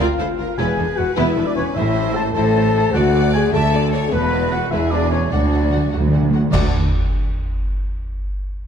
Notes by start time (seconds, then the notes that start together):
0.00 C4 F4 A#4 F5
0.18 D2 C4 E4 A4 C5
0.38 D2 C4 F4 A#4
0.58 E1 E2 B3 E4 G#4 B4 G#5
0.78 E1 E2 B3 D4 A4
0.97 E1 E2 B3 E4 F#4 B4 F#5
1.16 E1 E2 B3 E4 B4 E5
1.37 E1 E2 B3 D4 A4
1.46 D4 D5
1.55 E1 E2 B3 C#4 E4 B4 C#5
1.75 A1 A2 A3 E4 C5 E5
1.96 A3 E4 C5
2.15 A3 E4 A4 C5 A5
2.34 A1 A2 A3 E4 A4 C5 A5
2.55 A3 E4 C5
2.75 A3 E4 C5
2.93 D2 D3 A3 F#4 D5 F#5
3.14 A3 F#4 D5
3.33 A3 F#4 G#4 D5 G#5
3.52 D2 A3 F#4 A4 D5 E5 A5
3.72 A3 F#4 D5
3.92 A3 F#4 C#5 D5
4.11 E1 E2 G#3 B3 E4 B4
4.32 G#3 E4 B4
4.51 G#3 E4 F#4 B4 F#5
4.71 E1 E2 G#3 E4 G#4 B4 E5
4.91 G#3 D4 E4 B4 D5
5.11 G#3 C#4 E4 B4 C#5
5.31 D2 D3 A3 D4 F#4 D5 F#5
5.47 D3
5.52 D3 A3 F#4 F#5
5.63 D3
5.70 D3 A3 F#4 F#5
5.77 D3
5.85 D3
5.91 D2 D3 A3 F#4 F#5
6.00 D3
6.08 D3
6.13 D3 A3 F#4 F#5
6.23 D3
6.30 D3 A3 F#4 F#5
6.38 D3
6.51 D2 D3 D4 F#4 A4 D5 F#5, concert bass drum, crash